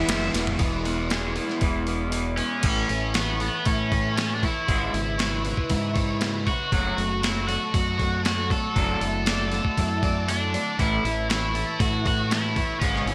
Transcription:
Already playing: E3 E4 B4 E5 G#5 E6
0.07 F#1 E3 G#3 B3 E4, snare, ride
0.33 E1 B3, snare, ride
0.47 floor tom
0.57 E1 E3 G#3 B3 E4, kick, open hi-hat
0.85 B3, open hi-hat
1.10 G#4, snare, open hi-hat
1.36 E4, open hi-hat
1.49 snare
1.61 E1 E3, kick, open hi-hat
1.87 B3, open hi-hat
2.12 E3, open hi-hat
2.38 B3 C#4, open hi-hat
2.62 A1 A2 E3 A3 B4 A5 C#6, kick, open hi-hat, crash
2.67 C#4
2.88 A1 A2 E3 E4, open hi-hat
3.14 A2 E3 B3 C#5, snare, open hi-hat
3.40 A2 E3 B3 A4, open hi-hat
3.65 A2 E3 C#4 E4, kick, open hi-hat
3.92 A2 E3 C#5, kick, open hi-hat
4.16 A2 E3 C#4 A4, snare, open hi-hat
4.35 D4
4.42 A2 E3 E4 C#5, kick, open hi-hat
4.67 G#1 G#2 C#3 G#3 B4 E5, kick, open hi-hat
4.93 G#1 G#2 C#3 E4, open hi-hat
5.18 G#2 C#3 C#5, snare, open hi-hat
5.44 G#2 C#3 B4, open hi-hat
5.57 kick
5.69 G#2 C#3 E4, kick, open hi-hat
5.94 G#2 C#3 C#5, kick, open hi-hat
6.21 G#2 C#3 B4, snare, open hi-hat
6.46 G#2 C#3 F#4 C#5, kick, open hi-hat
6.72 F#1 F#3 A3 C#4 F#4 A4 F#5, kick, open hi-hat
6.97 F#1 F#3 A3 F#4, open hi-hat
7.22 F#3 A3 E4 C#5, snare, open hi-hat
7.47 F#3 A3 F#4 A4, open hi-hat
7.73 F#2 F#3 A3 F#4, kick, open hi-hat
7.98 F#3 A3 C#5, kick, open hi-hat
8.23 F#3 A3 F#4 A4, snare, open hi-hat
8.50 F#3 A3 A4 C#5, kick, open hi-hat
8.74 F#1 F#3 A3 D4 D5 E6, kick, open hi-hat
9.00 F#1 F#3 A3 E4, open hi-hat
9.26 F#3 A3 D5, snare, open hi-hat
9.51 F#3 A3 A4, snare, open hi-hat
9.65 kick
9.77 F#2 F#3 A3 E4, kick, open hi-hat
10.02 F#3 A3 D5, kick, open hi-hat
10.27 F#3 A3 D4 A4, open hi-hat
10.54 F#3 A3 D5, open hi-hat
10.79 A1 A2 E3 A3 E4 B4 A5 C#6, kick, open hi-hat
11.04 A1 A2 E3 E4, open hi-hat
11.29 A2 E3 E4 C#5, snare, open hi-hat
11.54 A2 E3 A4, open hi-hat
11.80 A2 E3 E4 F#4, kick, open hi-hat
12.05 A2 E3 F#4 C#5, kick, open hi-hat
12.30 A2 E3 E4 A4, snare, open hi-hat
12.56 A2 E3 C#5, kick, open hi-hat
12.80 G#1 G#2 C#3 G#3 C#4 E5, kick, open hi-hat
12.96 snare
13.06 G#1 G#2 C#3 E4, open hi-hat

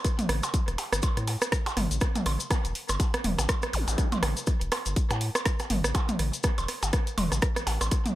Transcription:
0.04 kick, cross-stick, closed hi-hat, cabasa
0.19 closed hi-hat, mid tom, cabasa
0.29 A1, cross-stick, open hi-hat
0.43 closed hi-hat, percussion blips, cabasa
0.54 kick, closed hi-hat, cabasa
0.68 E1, cross-stick, closed hi-hat, cabasa
0.78 open hi-hat, percussion blips
0.93 G1, cross-stick, closed hi-hat, cabasa
1.02 kick, closed hi-hat, percussion blips, cabasa
1.17 A2, cross-stick, closed hi-hat, cabasa
1.27 open hi-hat, percussion blips
1.42 cross-stick, closed hi-hat, cabasa
1.52 kick, cross-stick, closed hi-hat, cabasa
1.66 closed hi-hat, percussion blips, cabasa
1.77 G1, cross-stick, open hi-hat, mid tom
1.91 A1, closed hi-hat, cabasa
2.01 kick, cross-stick, closed hi-hat, cabasa
2.15 closed hi-hat, mid tom, cabasa, percussion blips
2.26 A1, cross-stick, open hi-hat, percussion blips
2.40 closed hi-hat, cabasa
2.51 kick, cross-stick, closed hi-hat, cabasa, percussion blips
2.65 E1, closed hi-hat, cabasa
2.75 open hi-hat
2.89 G1, cross-stick, closed hi-hat, percussion blips, cabasa
3.00 kick, closed hi-hat, cabasa, percussion blips
3.14 cross-stick, closed hi-hat, cabasa
3.24 E1, open hi-hat, mid tom
3.39 A1, cross-stick, closed hi-hat, cabasa, percussion blips
3.49 kick, cross-stick, closed hi-hat, percussion blips, cabasa
3.62 cross-stick, closed hi-hat, cabasa
3.73 A1, open hi-hat, zap
3.88 A1, closed hi-hat, cabasa, percussion blips
3.98 kick, cross-stick, closed hi-hat, cabasa
4.12 closed hi-hat, mid tom, percussion blips, cabasa
4.23 A1, cross-stick, open hi-hat, percussion blips
4.37 closed hi-hat, cabasa
4.47 kick, cross-stick, closed hi-hat, cabasa
4.61 E1, closed hi-hat, cabasa
4.72 cross-stick, open hi-hat, percussion blips
4.86 G1, closed hi-hat, cabasa
4.96 kick, closed hi-hat, cabasa
5.10 A2, cross-stick, closed hi-hat, cabasa, percussion blips
5.21 open hi-hat
5.35 cross-stick, closed hi-hat, percussion blips, cabasa
5.46 kick, cross-stick, closed hi-hat, cabasa
5.59 cross-stick, closed hi-hat, cabasa, percussion blips
5.70 G1, open hi-hat, mid tom
5.84 A1, cross-stick, closed hi-hat, cabasa
5.95 kick, closed hi-hat, percussion blips, cabasa
6.09 closed hi-hat, mid tom, cabasa
6.19 A1, cross-stick, open hi-hat
6.33 closed hi-hat, cabasa
6.43 kick, cross-stick, closed hi-hat, cabasa, percussion blips
6.58 E1, closed hi-hat, percussion blips, cabasa
6.68 cross-stick, open hi-hat
6.83 G1, closed hi-hat, cabasa, percussion blips
6.93 kick, cross-stick, closed hi-hat, cabasa
7.07 closed hi-hat, cabasa
7.18 E1, open hi-hat, mid tom, percussion blips
7.32 A1, cross-stick, closed hi-hat, cabasa, percussion blips
7.42 kick, cross-stick, closed hi-hat, cabasa
7.56 cross-stick, closed hi-hat, cabasa
7.67 A1, open hi-hat, percussion blips
7.81 A1, cross-stick, closed hi-hat, percussion blips, cabasa
7.91 kick, cross-stick, closed hi-hat, cabasa
8.06 closed hi-hat, mid tom, cabasa

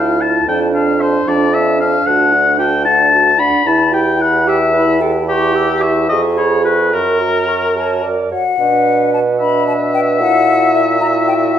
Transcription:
Already playing: D2 E4 F4 F5 A5
0.21 F4 A5
0.47 F2 D4 G5 A5
0.73 D4 F5 A5
0.99 D4 C5 A5
1.26 F2 D4 D5 A5
1.53 D4 E5 A5
1.80 D4 F5 A5
2.06 D2 F#4 F#5 A5
2.33 D4 F#5
2.59 F#4 G5 A5
2.85 D4 F#5 A5
3.12 F#4 A5
3.39 D4 F#5 B5
3.66 E2 E4 A5 B5
3.93 G4 G5
4.20 E4 F#5 B5
4.46 G4 E5 G5
4.73 E4 B4 B5
5.00 G4 A4 G5
5.27 E4 G4 C#6
5.55 G4 E6
5.82 E4 E5 C#6
6.09 F2 G#4 D#5 C#6
6.37 F4 C#5 B5
6.65 G#4 B4 C#6
6.93 F#2 A#4 C#6
7.21 F#4 A#5
7.48 A#4 C#6
7.76 F#4 C#5 A5
8.03 A#4 D5
8.31 F#4 C#5 F#5
8.58 B2 D4 B4
9.14 A5
9.38 D4 B4 E5 B5
9.67 A5
9.94 G5
10.20 A#2 E4 F#4 F#5
10.74 E5
11.00 E4 F#4 A#5
11.27 G5
11.54 F#5

